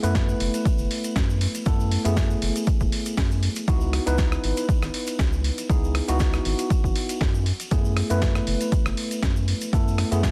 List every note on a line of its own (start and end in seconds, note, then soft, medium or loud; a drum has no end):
0.03 0.33 F#2 medium
0.03 1.63 A3 loud
0.03 1.63 B3 medium
0.03 1.64 E4 medium
0.03 1.64 B4 loud
0.03 closed hi-hat medium
0.03 shaker medium
0.15 kick loud
0.15 snare loud
0.15 closed hi-hat soft
0.15 shaker medium
0.29 shaker soft
0.40 0.49 F#1 medium
0.40 open hi-hat loud
0.54 closed hi-hat medium
0.54 shaker medium
0.65 kick loud
0.65 closed hi-hat soft
0.65 shaker medium
0.78 0.86 F#1 medium
0.78 shaker soft
0.91 open hi-hat loud
1.04 closed hi-hat medium
1.04 shaker medium
1.16 1.47 F#2 loud
1.16 kick loud
1.16 snare loud
1.16 closed hi-hat soft
1.16 shaker medium
1.30 shaker soft
1.41 open hi-hat loud
1.55 closed hi-hat medium
1.55 shaker medium
1.66 1.97 F#2 medium
1.66 2.02 A3 medium
1.66 2.02 B3 medium
1.66 2.02 E4 medium
1.66 2.02 A4 loud
1.66 kick loud
1.66 closed hi-hat soft
1.66 shaker medium
1.80 shaker soft
1.91 open hi-hat loud
2.05 2.35 F#2 medium
2.05 3.65 A3 medium
2.05 3.65 B3 medium
2.05 3.65 E4 medium
2.05 3.66 G#4 loud
2.05 closed hi-hat medium
2.05 shaker medium
2.17 kick loud
2.17 snare loud
2.17 closed hi-hat soft
2.17 shaker medium
2.30 shaker soft
2.42 2.51 F#1 medium
2.42 open hi-hat loud
2.56 closed hi-hat medium
2.56 shaker medium
2.66 kick loud
2.66 closed hi-hat soft
2.66 shaker medium
2.80 2.88 F#1 medium
2.80 kick medium
2.80 shaker soft
2.92 open hi-hat loud
3.06 closed hi-hat medium
3.06 shaker medium
3.17 3.48 F#2 loud
3.17 kick loud
3.17 snare loud
3.17 open hi-hat medium
3.17 shaker medium
3.31 shaker soft
3.43 open hi-hat loud
3.56 closed hi-hat medium
3.56 shaker medium
3.68 3.99 C#2 loud
3.68 4.03 B3 medium
3.68 4.03 D#4 medium
3.68 4.04 E4 medium
3.68 4.04 F#4 medium
3.68 kick loud
3.68 closed hi-hat soft
3.68 shaker medium
3.81 shaker soft
3.93 cross-stick medium
3.93 open hi-hat loud
4.06 4.37 C#2 medium
4.06 5.67 B3 loud
4.06 5.67 D#4 medium
4.06 5.67 E4 medium
4.06 5.67 B4 loud
4.06 closed hi-hat medium
4.06 shaker medium
4.18 kick loud
4.18 snare loud
4.18 closed hi-hat soft
4.18 shaker medium
4.32 cross-stick medium
4.32 shaker soft
4.44 4.52 G#1 medium
4.44 open hi-hat loud
4.57 closed hi-hat medium
4.57 shaker medium
4.69 kick loud
4.69 closed hi-hat soft
4.69 shaker medium
4.82 4.90 G#1 medium
4.82 cross-stick medium
4.82 shaker soft
4.94 open hi-hat loud
5.07 closed hi-hat medium
5.07 shaker medium
5.19 5.50 C#2 loud
5.19 kick loud
5.19 snare loud
5.19 closed hi-hat soft
5.19 shaker medium
5.33 shaker soft
5.44 open hi-hat loud
5.58 closed hi-hat medium
5.58 shaker medium
5.69 6.00 C#2 loud
5.69 6.05 B3 medium
5.69 6.05 D#4 medium
5.69 6.05 E4 medium
5.69 6.05 G#4 loud
5.69 kick loud
5.69 closed hi-hat soft
5.69 shaker medium
5.84 shaker soft
5.95 cross-stick medium
5.95 open hi-hat loud
6.08 6.38 C#2 medium
6.08 7.44 B3 loud
6.08 7.45 D#4 medium
6.08 7.45 E4 medium
6.08 7.45 F#4 loud
6.08 closed hi-hat medium
6.08 shaker medium
6.19 kick loud
6.19 snare loud
6.19 closed hi-hat medium
6.19 shaker medium
6.33 cross-stick medium
6.33 shaker soft
6.45 6.54 G#1 medium
6.45 open hi-hat loud
6.59 closed hi-hat medium
6.59 shaker medium
6.70 kick loud
6.70 closed hi-hat soft
6.70 shaker medium
6.84 6.91 G#1 medium
6.84 kick medium
6.84 shaker soft
6.96 open hi-hat loud
7.09 closed hi-hat medium
7.09 shaker medium
7.21 7.52 F#2 loud
7.21 kick loud
7.21 snare loud
7.21 open hi-hat medium
7.21 shaker medium
7.34 shaker soft
7.46 open hi-hat medium
7.60 closed hi-hat medium
7.60 shaker medium
7.71 8.02 F#2 loud
7.71 8.07 A3 medium
7.71 8.07 B3 medium
7.71 8.07 E4 medium
7.71 8.07 G#4 medium
7.71 kick loud
7.71 closed hi-hat medium
7.71 shaker medium
7.85 shaker soft
7.96 cross-stick medium
7.96 open hi-hat loud
8.10 8.40 F#2 medium
8.10 9.70 A3 loud
8.10 9.70 B3 medium
8.10 9.70 E4 medium
8.10 9.71 B4 loud
8.10 closed hi-hat medium
8.10 shaker medium
8.22 kick loud
8.22 snare loud
8.22 closed hi-hat medium
8.22 shaker medium
8.35 cross-stick medium
8.35 shaker soft
8.47 8.56 F#1 medium
8.47 open hi-hat loud
8.61 closed hi-hat medium
8.61 shaker medium
8.72 kick loud
8.72 closed hi-hat soft
8.72 shaker medium
8.86 8.93 F#1 medium
8.86 cross-stick medium
8.86 shaker soft
8.97 open hi-hat loud
9.11 closed hi-hat medium
9.11 shaker medium
9.23 9.53 F#2 loud
9.23 kick loud
9.23 snare loud
9.23 closed hi-hat medium
9.23 shaker medium
9.36 shaker soft
9.48 open hi-hat medium
9.61 closed hi-hat medium
9.61 shaker medium
9.73 10.04 F#2 loud
9.73 10.08 A3 medium
9.73 10.09 B3 medium
9.73 10.09 E4 medium
9.73 10.09 A4 medium
9.73 kick loud
9.73 closed hi-hat medium
9.73 shaker medium
9.88 shaker soft
9.98 cross-stick medium
9.98 open hi-hat loud
10.11 10.31 F#2 medium
10.11 10.31 A3 medium
10.11 10.31 B3 medium
10.11 10.31 E4 medium
10.11 10.31 G#4 loud
10.11 closed hi-hat medium
10.11 shaker medium
10.23 kick loud
10.23 snare loud
10.23 closed hi-hat medium
10.23 shaker medium